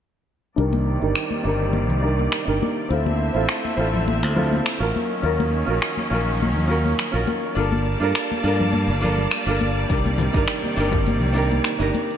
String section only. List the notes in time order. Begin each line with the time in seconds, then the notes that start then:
0.58 C3 D#3 G3 A#3 D5
2.91 D3 A3 C4 E5
4.94 D#3 F#3 A#3 C#4
7.57 G3 A#3 D5 A5
9.90 C3 D#3 A#3